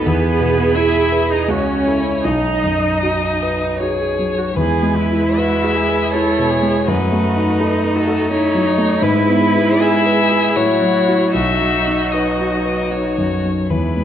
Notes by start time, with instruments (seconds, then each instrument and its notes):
0.05 grand piano E2, violin B3 B4, cello B3, viola G#4
0.41 grand piano B2
0.75 violin E4 E5, cello E4, grand piano E4
1.12 grand piano B4
1.30 cello D#4, violin D#4 D#5
1.48 grand piano C#2, violin C#4 C#5, cello C#4, viola F#4
1.86 grand piano E4 A4, viola E4
2.24 grand piano B1, violin D#4 D#5, cello D#4, viola D#4
2.64 grand piano F#2
3.03 viola D#4, grand piano F#4
3.43 grand piano B4
3.79 grand piano F#4, viola G#4, violin C#5
4.19 grand piano F#3
4.38 viola F#4
4.56 grand piano E2, viola G#3, violin E4 B4, cello G#4
4.83 grand piano G#3
4.98 cello E4
5.12 grand piano E4
5.37 cello F#4, grand piano B4, violin E5
5.64 grand piano G#4
5.76 cello G#4
5.89 grand piano B4
6.13 grand piano E4, cello A4, violin C#5
6.39 grand piano B2
6.50 cello G#4
6.63 grand piano G#3
6.87 grand piano F#2, viola A3, violin D#4 B4, cello F#4
7.12 grand piano A3
7.36 grand piano D#4
7.60 cello D#4, grand piano A4
7.84 grand piano D#4
7.96 cello F#4, violin A4
8.07 grand piano A4
8.31 grand piano D#4, cello E4, violin C#5
8.55 grand piano F#3
8.66 cello D#4
8.78 grand piano A3
9.02 grand piano G#2, viola G#3, violin E4 B4, cello E4
9.27 grand piano B3
9.55 grand piano E4
9.81 cello G#4, grand piano G#4, violin E5
10.06 grand piano B4
10.31 grand piano G#4
10.56 grand piano A2, viola F#3, cello F#4, violin C#5
10.82 grand piano F#3
11.08 grand piano E4 F#4
11.33 grand piano B1, cello D#4, violin F#4 E5
11.60 grand piano F#3
11.88 grand piano D#4
12.12 grand piano B4, violin D#5
12.40 grand piano F#4
12.65 grand piano B4
12.91 grand piano D#4, violin C#5
13.18 grand piano F#2
13.44 grand piano F#3
13.70 grand piano E2, viola G#3, violin E4 B4
13.97 grand piano G#3